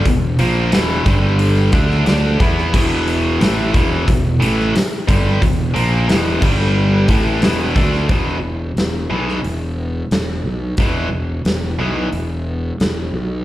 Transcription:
0.06 E1 E2 B2, kick, open hi-hat
0.39 A#1 A#2 F3 A#3, open hi-hat
0.72 E1 E2 B2 E3, snare, open hi-hat
1.06 G1 G2 D3 G3, kick, open hi-hat
1.39 open hi-hat
1.72 D2 D3 A3 D4, kick, open hi-hat
1.91 snare
2.06 D2 D3 A3 D4, snare, open hi-hat
2.40 E2 E3 B3 E4, kick, open hi-hat
2.58 snare
2.73 E1 E2 B2 E3, kick, crash
3.08 open hi-hat
3.40 A1 A2 E3 A3, snare, open hi-hat
3.73 E1 E2 B2 E3, kick, open hi-hat
4.08 E1 E2 B2, kick, open hi-hat
4.40 A1 A2 E3 A3, open hi-hat
4.60 snare
4.75 muted distorted electric guitar stroke, muted fingered electric bass stroke, snare, open hi-hat
5.08 G1 G2 D3 G3, kick, open hi-hat
5.41 E1 E2 B2, kick, open hi-hat
5.74 A#1 A#2 F3 A#3, open hi-hat
6.08 E1 E2 B2 E3, snare, open hi-hat
6.42 G1 G2 D3 G3, kick, crash
7.08 A1 A2 E3 A3, kick, open hi-hat
7.42 E1 E2 B2 E3, snare, open hi-hat
7.76 D2 D3 A3 D4, kick, open hi-hat
7.93 snare
8.09 E1 E2 B2 E3, kick, open hi-hat
8.43 E1
8.76 E1, snare, open hi-hat
9.10 B1 E2 B2 E3
9.28 snare
9.44 E1, open hi-hat
10.11 E1, snare, open hi-hat
10.44 B1
10.77 E1 E2 B2 E3, kick, open hi-hat
11.11 E1
11.45 E1, snare, open hi-hat
11.78 B1 E2 B2 E3
12.13 E1, open hi-hat
12.80 E1, snare, open hi-hat
13.14 B1

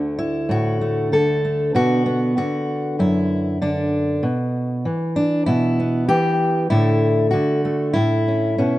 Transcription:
Already playing: D2 D3 A3 F#4
0.19 E4
0.49 A2 F#4
0.81 A3
1.12 D3 A4
1.45 A3
1.75 B2 D3 B3 F#4
2.06 B3
2.37 D3 F#4
2.99 F#2 E4
3.62 D3 D4
4.23 B2
4.85 E3
5.16 D4
5.46 B2 E4
5.80 B3
6.08 E3 G4
6.70 A2 D3 A3 E4
7.31 D3 F#4
7.65 A3
7.94 A2 E4
8.28 C#4
8.58 B2 C#4

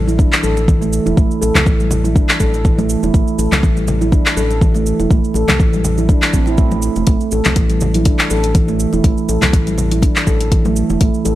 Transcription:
Already playing: A1
0.07 E4, high conga, cabasa
0.18 D4, kick, muted conga, cabasa
0.33 clap
0.43 A1 A4, high conga, cabasa
0.57 muted conga, cabasa
0.68 E3, kick, cabasa
0.81 A3, muted conga, cabasa
0.93 cabasa
1.06 E1 E4, muted conga, cabasa
1.17 A1 A3, kick, cabasa
1.31 cabasa
1.41 A1 A4, muted conga, cabasa
1.55 C2, clap, high conga, low conga, cabasa
1.66 A1 E3, kick, muted conga, cabasa
1.80 G3, high conga, cabasa
1.91 muted conga, low conga, cabasa
2.04 E4, high conga, cabasa
2.15 D4, kick, muted conga, cabasa
2.29 clap
2.40 A1 A4, kick, high conga, cabasa
2.54 muted conga, cabasa
2.65 E3, kick, cabasa
2.78 A3, muted conga, high conga, cabasa
2.89 cabasa
3.03 E1 E4, muted conga, cabasa
3.14 A1 A3, kick, cabasa
3.28 cabasa
3.38 A1 A4, muted conga, cabasa
3.52 C2, clap, high conga, low conga, cabasa
3.63 A1 E3, kick, muted conga, cabasa
3.77 G3, cabasa
3.88 muted conga, low conga, cabasa
4.01 E4, high conga, cabasa
4.12 D4, kick, muted conga, cabasa
4.26 clap
4.37 A1 A4, high conga, cabasa
4.51 muted conga, cabasa
4.61 E3, kick, cabasa
4.74 A3, muted conga, cabasa
4.86 cabasa
4.99 E1 E4, muted conga, cabasa
5.10 A1 A3, kick, cabasa
5.24 cabasa
5.34 A1 A4, muted conga, cabasa
5.48 C2, clap, high conga, low conga, cabasa
5.60 A1 E3, kick, muted conga, cabasa
5.73 G3, high conga, cabasa
5.84 muted conga, low conga, cabasa
5.98 E4, high conga, cabasa
6.09 D4, kick, muted conga, cabasa
6.22 clap
6.33 A1 C4, kick, high conga, cabasa
6.46 E4, muted conga, cabasa
6.58 A3, kick, cabasa
6.71 A3, muted conga, high conga, cabasa
6.82 cabasa
6.96 E1 A3, muted conga, cabasa
7.07 A1 A3, kick, closed hi-hat, cabasa
7.21 cabasa
7.31 A1 A4, muted conga, cabasa
7.45 C2, clap, closed hi-hat, high conga, low conga, cabasa
7.56 A1 E3, kick, closed hi-hat, cabasa
7.70 G3, closed hi-hat, cabasa
7.81 muted conga, low conga, cabasa
7.94 E4, closed hi-hat, high conga, cabasa
8.05 D4, kick, closed hi-hat, muted conga, cabasa
8.19 clap
8.30 A1 A4, high conga, cabasa
8.43 closed hi-hat, muted conga, cabasa
8.55 E3, kick, closed hi-hat, cabasa
8.68 A3, muted conga, cabasa
8.80 cabasa
8.93 E1 E4, muted conga, cabasa
9.04 A1 A3, kick, closed hi-hat, cabasa
9.18 cabasa
9.29 A1 A4, muted conga, cabasa
9.42 C2, clap, closed hi-hat, high conga, low conga, cabasa
9.53 A1 E3, kick, closed hi-hat, cabasa
9.67 G3, closed hi-hat, high conga, cabasa
9.78 muted conga, low conga, cabasa
9.91 E4, closed hi-hat, high conga, cabasa
10.02 D4, kick, closed hi-hat, muted conga, cabasa
10.16 clap
10.27 A1 A4, kick, high conga, cabasa
10.41 closed hi-hat, muted conga, cabasa
10.52 E3, kick, closed hi-hat, cabasa
10.65 A3, muted conga, high conga, cabasa
10.76 cabasa
10.90 E1 E4, muted conga, cabasa
11.01 A1 A3, kick, closed hi-hat, cabasa
11.14 cabasa
11.25 A1 A4, muted conga, cabasa

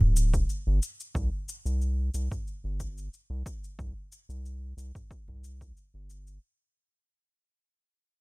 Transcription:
0.01 D1, udu
0.16 cabasa
0.34 kick, cabasa
0.49 cabasa
0.67 G1
0.83 cabasa
1.00 cabasa
1.15 C2, kick, udu, cabasa
1.49 cabasa
1.66 C2, cabasa
1.82 cabasa
2.14 C2, cabasa
2.31 kick, udu, cabasa
2.47 cabasa
2.64 G1
2.80 kick, cabasa
2.98 cabasa
3.14 cabasa
3.30 C2
3.46 kick, cabasa
3.64 cabasa
3.79 C2, kick, udu, cabasa
4.12 cabasa
4.29 C2, cabasa
4.46 cabasa
4.77 C2, cabasa
4.95 kick, udu, cabasa
5.11 kick, cabasa
5.28 C2, udu
5.44 cabasa
5.61 kick, cabasa
5.77 cabasa
5.94 G1
6.10 cabasa
6.27 cabasa

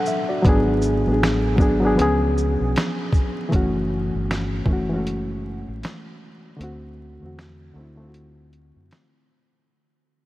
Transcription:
Already playing: F#3 B3 D4 A4 F#5
0.06 E5, shaker
0.29 F#4 D5
0.42 G#1 F#3 B3, kick, closed hi-hat
0.46 D4 G#4
0.82 shaker
1.06 A1 F#3 B3
1.11 D4 G#4
1.23 finger snap, snare, closed hi-hat
1.56 G#1 F#3 B3, kick
1.60 D4 G#4, shaker
1.80 F#3 B3
1.85 D4 G#4
1.95 C#2 F3 B3, closed hi-hat
1.99 C#4 G#4
2.38 shaker
2.60 B1
2.76 finger snap, snare, closed hi-hat
3.13 kick, shaker
3.49 F#1 E3 A3, kick
3.53 C#4 F#4, closed hi-hat
4.14 G1
4.31 finger snap, snare, closed hi-hat
4.66 F#1 E3 A3, kick
4.70 C#4 F#4
4.89 E3 G#3
4.93 C#4 F#4
4.98 A3
5.07 closed hi-hat
5.68 A1
5.83 finger snap, snare, closed hi-hat
6.57 D2 D3 A3
6.61 C4 F#4, closed hi-hat
7.20 E2 D3 A3
7.24 C4 F#4
7.39 finger snap, snare, closed hi-hat
7.74 D2 D3 A3
7.78 C4 E4
7.95 D3 A3
8.00 C4 F4
8.08 F#4
8.14 closed hi-hat
8.53 closed hi-hat
8.76 F#2
8.91 finger snap, snare, closed hi-hat

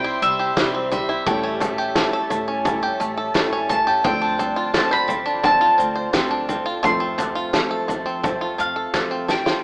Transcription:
Already playing: C2 C3 G3 C4 E4 G4 C5 E5 G5 C6
0.04 E4
0.22 C2 G3 E5, shaker
0.39 G4
0.56 C2 C3 E3 G3 C4 E4 C5 E5, kick, snare, clap, shaker
0.74 C4
0.91 G3 C4 E4 C5 E5, floor tom, shaker
1.09 E4, shaker
1.26 A1 A2 E3 G3 A3 C#4 E4 A4 C#5 G5 A5, kick, floor tom, shaker
1.44 C#4
1.61 G3 A3 C#4 E4 A4, clap, floor tom, shaker
1.78 G4, shaker
1.95 A2 E3 G3 A3 C#4 E4 A4 C#5, kick, snare, clap, shaker
2.13 A4
2.29 A2 G3 A3 C#4 E4 A4, floor tom, shaker
2.48 C#4
2.65 G3 A3 C#4 E4 A4 C#5, kick, floor tom, shaker
2.83 G4
3.00 A1 A3, shaker
3.17 A4
3.34 A1 A2 E3 G3 A3 C#4 E4 A4 C#5, kick, snare, clap, shaker
3.53 C#4
3.69 G3 A3 C#4 E4 A4 A5, floor tom, shaker
3.87 G4, shaker
4.04 D2 D3 F3 A3 C4 D4 F4 A4 C5 D5 G5, kick, floor tom, shaker
4.22 D4
4.38 C4 F4 A4, floor tom, shaker
4.56 F4, shaker
4.74 D3 F3 A3 C4 D4 F4 A4 D5 A5, kick, snare, clap, shaker
4.91 C5 B5
5.08 D3 C4 F4 A4, floor tom, shaker
5.26 D4, shaker
5.43 F3 A3 C4 D4 A4 C5 A5, kick, floor tom, shaker
5.61 F4
5.78 D2 C4, shaker
5.96 C5
6.13 D2 D3 F3 A3 C4 D4 F4 A4 D5, kick, snare, clap, shaker
6.31 D4
6.48 C4 F4 A4, floor tom, shaker
6.66 F4, shaker
6.83 F1 F2 F3 A3 C4 F4 A4 C5 C6, kick, floor tom, shaker
7.00 C4
7.18 A3 C4 F4 A4, clap, floor tom, shaker
7.35 F4, shaker
7.53 F3 A3 C4 F4 A4 C5, kick, snare, clap, shaker
7.71 A4
7.88 F3 A3 C4 F4 A4, floor tom, shaker
8.06 C4, shaker
8.23 F3 A3 C4 F4 A4 C5, kick, floor tom, shaker
8.41 F4
8.58 F2 A3 F5, shaker
8.76 A4
8.94 F2 F3 A3 C4 F4 A4 C5, kick, snare, clap, shaker
9.11 C4
9.28 A3 C4 F4 A4 G5, snare, shaker
9.46 F4, snare, shaker

